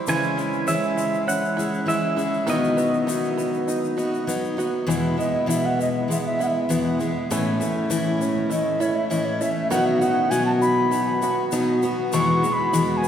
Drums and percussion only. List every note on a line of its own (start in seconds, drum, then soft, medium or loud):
0.07 shaker medium
0.23 shaker soft
0.38 shaker medium
0.53 shaker soft
0.68 shaker medium
0.83 shaker soft
0.98 shaker medium
1.14 shaker soft
1.29 shaker medium
1.45 shaker soft
1.59 shaker medium
1.74 shaker soft
1.89 shaker medium
2.18 shaker medium
2.34 shaker soft
2.48 shaker medium
2.64 shaker soft
2.78 shaker medium
2.94 shaker soft
3.09 shaker medium
3.24 shaker soft
3.39 shaker medium
3.54 shaker soft
3.68 shaker medium
3.84 shaker soft
3.99 shaker medium
4.14 shaker soft
4.29 shaker medium
4.44 shaker soft
4.60 shaker medium
4.90 shaker medium
5.20 shaker medium
5.50 shaker medium
5.81 shaker medium
6.11 shaker medium
6.41 shaker medium
6.70 shaker medium
7.00 shaker medium
7.31 shaker medium
7.61 shaker medium
7.91 shaker medium
8.21 shaker medium
8.51 shaker medium
8.81 shaker medium
9.11 shaker medium
9.41 shaker medium
9.71 shaker medium
10.02 shaker medium
10.32 shaker medium
10.62 shaker medium
10.92 shaker medium
11.22 shaker medium
11.52 shaker medium
11.82 shaker medium
12.13 shaker medium
12.44 shaker medium
12.74 shaker loud
13.04 shaker medium